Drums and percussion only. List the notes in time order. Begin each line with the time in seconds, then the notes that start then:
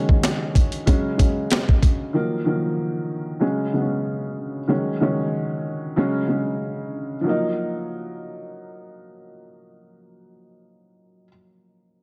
0.09 kick
0.23 snare, closed hi-hat
0.55 kick, closed hi-hat
0.72 closed hi-hat
0.87 kick, closed hi-hat
1.19 kick, closed hi-hat
1.50 snare, closed hi-hat
1.69 kick
1.83 kick, closed hi-hat